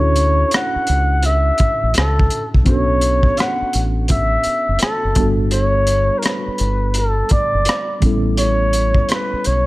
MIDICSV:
0, 0, Header, 1, 6, 480
1, 0, Start_track
1, 0, Key_signature, 2, "major"
1, 0, Tempo, 714286
1, 1791, Time_signature, 4, 2, 24, 8
1, 6495, End_track
2, 0, Start_track
2, 0, Title_t, "Muted trumpet"
2, 0, Program_c, 0, 59
2, 0, Note_on_c, 0, 73, 82
2, 370, Note_on_c, 0, 78, 91
2, 380, Note_off_c, 0, 73, 0
2, 846, Note_on_c, 0, 76, 96
2, 856, Note_off_c, 0, 78, 0
2, 1318, Note_off_c, 0, 76, 0
2, 1327, Note_on_c, 0, 69, 81
2, 1681, Note_off_c, 0, 69, 0
2, 1798, Note_on_c, 0, 73, 90
2, 2283, Note_on_c, 0, 78, 95
2, 2294, Note_off_c, 0, 73, 0
2, 2590, Note_off_c, 0, 78, 0
2, 2760, Note_on_c, 0, 76, 89
2, 3209, Note_off_c, 0, 76, 0
2, 3241, Note_on_c, 0, 69, 82
2, 3598, Note_off_c, 0, 69, 0
2, 3717, Note_on_c, 0, 73, 91
2, 4157, Note_on_c, 0, 70, 56
2, 4167, Note_off_c, 0, 73, 0
2, 4196, Note_on_c, 0, 71, 80
2, 4206, Note_off_c, 0, 70, 0
2, 4679, Note_on_c, 0, 69, 79
2, 4689, Note_off_c, 0, 71, 0
2, 4919, Note_on_c, 0, 74, 79
2, 4929, Note_off_c, 0, 69, 0
2, 5395, Note_off_c, 0, 74, 0
2, 5639, Note_on_c, 0, 73, 107
2, 6120, Note_on_c, 0, 71, 84
2, 6130, Note_off_c, 0, 73, 0
2, 6360, Note_on_c, 0, 73, 92
2, 6370, Note_off_c, 0, 71, 0
2, 6495, Note_off_c, 0, 73, 0
2, 6495, End_track
3, 0, Start_track
3, 0, Title_t, "Tine electric piano"
3, 0, Program_c, 1, 4
3, 0, Note_on_c, 1, 61, 59
3, 0, Note_on_c, 1, 62, 52
3, 0, Note_on_c, 1, 64, 51
3, 0, Note_on_c, 1, 66, 50
3, 0, Note_on_c, 1, 69, 58
3, 5, Control_c, 1, 64, 127
3, 1760, Note_off_c, 1, 61, 0
3, 1764, Note_off_c, 1, 62, 0
3, 1769, Note_off_c, 1, 64, 0
3, 1774, Note_off_c, 1, 66, 0
3, 1778, Note_off_c, 1, 69, 0
3, 1781, Note_on_c, 1, 59, 59
3, 1790, Note_on_c, 1, 61, 54
3, 1799, Control_c, 1, 64, 0
3, 1799, Note_on_c, 1, 62, 54
3, 1808, Note_on_c, 1, 66, 53
3, 1817, Note_on_c, 1, 69, 60
3, 1902, Control_c, 1, 64, 127
3, 3439, Note_off_c, 1, 59, 0
3, 3444, Note_off_c, 1, 61, 0
3, 3448, Note_off_c, 1, 62, 0
3, 3453, Note_off_c, 1, 66, 0
3, 3457, Note_off_c, 1, 69, 0
3, 3464, Note_on_c, 1, 55, 55
3, 3474, Note_on_c, 1, 59, 45
3, 3481, Control_c, 1, 64, 0
3, 3483, Note_on_c, 1, 62, 50
3, 3492, Note_on_c, 1, 66, 49
3, 3502, Note_on_c, 1, 69, 64
3, 3608, Control_c, 1, 64, 127
3, 5361, Note_off_c, 1, 55, 0
3, 5366, Note_off_c, 1, 59, 0
3, 5370, Note_off_c, 1, 62, 0
3, 5374, Note_off_c, 1, 66, 0
3, 5379, Note_on_c, 1, 55, 54
3, 5380, Note_off_c, 1, 69, 0
3, 5389, Note_on_c, 1, 59, 48
3, 5397, Note_on_c, 1, 61, 46
3, 5399, Control_c, 1, 64, 0
3, 5410, Note_on_c, 1, 64, 51
3, 5417, Note_on_c, 1, 69, 60
3, 5510, Control_c, 1, 64, 127
3, 6495, Note_off_c, 1, 55, 0
3, 6495, Note_off_c, 1, 59, 0
3, 6495, Note_off_c, 1, 61, 0
3, 6495, Note_off_c, 1, 64, 0
3, 6495, Note_off_c, 1, 69, 0
3, 6495, End_track
4, 0, Start_track
4, 0, Title_t, "Fingered electric bass"
4, 0, Program_c, 2, 33
4, 0, Note_on_c, 2, 38, 75
4, 288, Note_off_c, 2, 38, 0
4, 601, Note_on_c, 2, 37, 73
4, 1010, Note_off_c, 2, 37, 0
4, 1233, Note_on_c, 2, 33, 69
4, 1305, Note_off_c, 2, 33, 0
4, 1329, Note_on_c, 2, 37, 86
4, 1528, Note_off_c, 2, 37, 0
4, 1717, Note_on_c, 2, 35, 74
4, 1788, Note_off_c, 2, 35, 0
4, 1795, Note_on_c, 2, 35, 88
4, 2206, Note_off_c, 2, 35, 0
4, 2522, Note_on_c, 2, 33, 84
4, 2930, Note_off_c, 2, 33, 0
4, 3150, Note_on_c, 2, 30, 82
4, 3224, Note_off_c, 2, 30, 0
4, 3392, Note_on_c, 2, 30, 62
4, 3465, Note_off_c, 2, 30, 0
4, 3477, Note_on_c, 2, 31, 88
4, 4094, Note_off_c, 2, 31, 0
4, 4440, Note_on_c, 2, 31, 76
4, 4849, Note_off_c, 2, 31, 0
4, 5071, Note_on_c, 2, 30, 72
4, 5144, Note_off_c, 2, 30, 0
4, 5397, Note_on_c, 2, 33, 83
4, 6014, Note_off_c, 2, 33, 0
4, 6364, Note_on_c, 2, 35, 80
4, 6495, Note_off_c, 2, 35, 0
4, 6495, End_track
5, 0, Start_track
5, 0, Title_t, "Muted fingered electric bass strokes"
5, 510, Note_on_c, 9, 29, 36
5, 577, Note_off_c, 9, 29, 0
5, 1082, Note_on_c, 9, 29, 41
5, 1149, Note_off_c, 9, 29, 0
5, 2434, Note_on_c, 9, 29, 38
5, 2501, Note_off_c, 9, 29, 0
5, 3001, Note_on_c, 9, 29, 41
5, 3068, Note_off_c, 9, 29, 0
5, 4354, Note_on_c, 9, 29, 40
5, 4421, Note_off_c, 9, 29, 0
5, 4919, Note_on_c, 9, 29, 49
5, 4987, Note_off_c, 9, 29, 0
5, 6272, Note_on_c, 9, 29, 42
5, 6340, Note_off_c, 9, 29, 0
5, 6495, End_track
6, 0, Start_track
6, 0, Title_t, "Drums"
6, 105, Note_on_c, 9, 42, 67
6, 172, Note_off_c, 9, 42, 0
6, 344, Note_on_c, 9, 42, 73
6, 365, Note_on_c, 9, 37, 106
6, 411, Note_off_c, 9, 42, 0
6, 432, Note_off_c, 9, 37, 0
6, 583, Note_on_c, 9, 42, 53
6, 650, Note_off_c, 9, 42, 0
6, 824, Note_on_c, 9, 42, 69
6, 891, Note_off_c, 9, 42, 0
6, 1061, Note_on_c, 9, 42, 57
6, 1075, Note_on_c, 9, 36, 85
6, 1128, Note_off_c, 9, 42, 0
6, 1142, Note_off_c, 9, 36, 0
6, 1304, Note_on_c, 9, 42, 76
6, 1330, Note_on_c, 9, 37, 112
6, 1371, Note_off_c, 9, 42, 0
6, 1397, Note_off_c, 9, 37, 0
6, 1475, Note_on_c, 9, 36, 90
6, 1542, Note_off_c, 9, 36, 0
6, 1548, Note_on_c, 9, 42, 64
6, 1616, Note_off_c, 9, 42, 0
6, 1710, Note_on_c, 9, 36, 68
6, 1777, Note_off_c, 9, 36, 0
6, 1785, Note_on_c, 9, 42, 70
6, 1788, Note_on_c, 9, 36, 97
6, 1852, Note_off_c, 9, 42, 0
6, 1856, Note_off_c, 9, 36, 0
6, 2025, Note_on_c, 9, 42, 65
6, 2093, Note_off_c, 9, 42, 0
6, 2171, Note_on_c, 9, 36, 73
6, 2238, Note_off_c, 9, 36, 0
6, 2266, Note_on_c, 9, 42, 69
6, 2287, Note_on_c, 9, 37, 94
6, 2333, Note_off_c, 9, 42, 0
6, 2354, Note_off_c, 9, 37, 0
6, 2508, Note_on_c, 9, 42, 51
6, 2575, Note_off_c, 9, 42, 0
6, 2743, Note_on_c, 9, 42, 76
6, 2756, Note_on_c, 9, 36, 73
6, 2810, Note_off_c, 9, 42, 0
6, 2823, Note_off_c, 9, 36, 0
6, 2980, Note_on_c, 9, 42, 58
6, 3047, Note_off_c, 9, 42, 0
6, 3218, Note_on_c, 9, 42, 78
6, 3243, Note_on_c, 9, 37, 105
6, 3285, Note_off_c, 9, 42, 0
6, 3311, Note_off_c, 9, 37, 0
6, 3463, Note_on_c, 9, 42, 69
6, 3469, Note_on_c, 9, 36, 96
6, 3530, Note_off_c, 9, 42, 0
6, 3536, Note_off_c, 9, 36, 0
6, 3702, Note_on_c, 9, 42, 76
6, 3770, Note_off_c, 9, 42, 0
6, 3943, Note_on_c, 9, 42, 68
6, 4010, Note_off_c, 9, 42, 0
6, 4183, Note_on_c, 9, 42, 73
6, 4204, Note_on_c, 9, 37, 99
6, 4250, Note_off_c, 9, 42, 0
6, 4271, Note_off_c, 9, 37, 0
6, 4423, Note_on_c, 9, 42, 49
6, 4490, Note_off_c, 9, 42, 0
6, 4663, Note_on_c, 9, 42, 72
6, 4731, Note_off_c, 9, 42, 0
6, 4899, Note_on_c, 9, 42, 60
6, 4914, Note_on_c, 9, 36, 86
6, 4966, Note_off_c, 9, 42, 0
6, 4981, Note_off_c, 9, 36, 0
6, 5142, Note_on_c, 9, 42, 80
6, 5168, Note_on_c, 9, 37, 107
6, 5209, Note_off_c, 9, 42, 0
6, 5235, Note_off_c, 9, 37, 0
6, 5388, Note_on_c, 9, 42, 66
6, 5391, Note_on_c, 9, 36, 85
6, 5456, Note_off_c, 9, 42, 0
6, 5458, Note_off_c, 9, 36, 0
6, 5628, Note_on_c, 9, 42, 74
6, 5695, Note_off_c, 9, 42, 0
6, 5866, Note_on_c, 9, 42, 64
6, 5934, Note_off_c, 9, 42, 0
6, 6011, Note_on_c, 9, 36, 71
6, 6078, Note_off_c, 9, 36, 0
6, 6106, Note_on_c, 9, 42, 64
6, 6127, Note_on_c, 9, 37, 96
6, 6173, Note_off_c, 9, 42, 0
6, 6194, Note_off_c, 9, 37, 0
6, 6346, Note_on_c, 9, 42, 58
6, 6413, Note_off_c, 9, 42, 0
6, 6495, End_track
0, 0, End_of_file